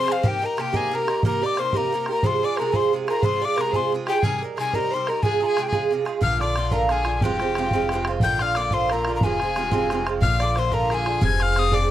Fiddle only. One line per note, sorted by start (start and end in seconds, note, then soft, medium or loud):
0.00 0.25 C5 medium
0.23 0.45 G4 medium
0.43 0.61 A#4 medium
0.60 0.77 G4 medium
0.76 0.96 G#4 medium
0.95 1.24 A#4 medium
1.24 1.44 A#4 medium
1.43 1.60 D5 medium
1.59 1.76 C5 medium
1.75 2.08 A#4 medium
2.09 2.25 A#4 medium
2.24 2.45 C5 medium
2.44 2.59 D5 medium
2.58 2.75 A#4 medium
2.74 2.92 C5 medium
3.07 3.24 A#4 medium
3.22 3.43 C5 medium
3.42 3.58 D5 medium
3.56 3.73 A#4 medium
3.71 3.91 C5 medium
4.07 4.21 G4 medium
4.21 4.39 G#4 medium
4.56 4.74 G#4 medium
4.73 4.92 A#4 medium
4.91 5.09 C5 medium
5.08 5.23 A#4 medium
5.24 5.45 G#4 medium
5.47 5.66 G#4 medium
5.68 5.90 G#4 medium
6.22 6.39 F5 medium
6.40 6.70 D5 medium
6.73 6.90 A#4 medium
6.91 7.16 G#4 medium
7.16 7.23 G#4 medium
7.21 8.06 G4 medium
8.21 8.43 G5 medium
8.41 8.58 F5 medium
8.56 8.75 D5 medium
8.74 8.92 C5 medium
8.90 9.15 A#4 medium
9.23 10.03 G#4 medium
10.21 10.41 F5 medium
10.40 10.56 D5 medium
10.57 10.74 C5 medium
10.72 10.93 A#4 medium
10.92 11.24 G#4 medium
11.22 11.43 G#5 medium
11.42 11.75 F5 loud
11.73 11.91 D5 medium